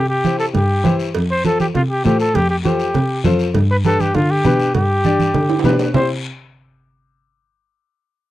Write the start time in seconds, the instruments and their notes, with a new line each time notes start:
Already playing: cello C3
0.09 trumpet G4
0.24 upright piano E4 G4 C5, high conga, short guiro
0.39 trumpet A4, short guiro
0.54 cello G2, trumpet G4, cowbell, low conga, long guiro
0.84 cello E3, upright piano E4 G4 C5, high conga, low conga, short guiro
1.00 short guiro
1.15 cello F2, cowbell, long guiro
1.31 trumpet C5
1.44 upright piano F4 A4 C5, trumpet A4, high conga, short guiro
1.60 trumpet G4, high conga, short guiro
1.75 cello C3, trumpet F4, cowbell, low conga, long guiro
1.90 trumpet G4
2.05 cello A2, upright piano F4 A4 C5, trumpet G4, high conga, low conga, short guiro
2.20 trumpet A4, short guiro
2.34 cello F2, trumpet G4, cowbell, low conga, long guiro
2.50 trumpet G4
2.64 upright piano F4 A4 C5, trumpet G4, high conga, short guiro
2.79 short guiro
2.94 cello C3, cowbell, low conga, long guiro
3.24 cello F2, upright piano F4 A4 C5, high conga, low conga, short guiro
3.39 short guiro
3.54 cello G2, cowbell, low conga, long guiro
3.71 trumpet B4
3.84 upright piano D4 G4 B4, trumpet A4, high conga, short guiro
4.00 trumpet G4, high conga, short guiro
4.15 cello D3, trumpet F4, cowbell, low conga, long guiro
4.31 trumpet G4
4.44 cello B2, upright piano D4 G4 B4, high conga, low conga, short guiro
4.59 short guiro
4.75 cello G2, trumpet G4, cowbell, low conga, long guiro
5.04 upright piano D4 G4 D5, high conga, short guiro
5.19 high conga, short guiro
5.34 cello D3, cowbell, low conga, long guiro
5.49 high timbale
5.59 high timbale
5.64 cello B2, upright piano D4 G4 B4, high conga, low conga, short guiro
5.69 low timbale
5.79 low timbale, short guiro
5.94 cello C3, upright piano E4 G4 C5, trumpet C5, low conga, low timbale, long guiro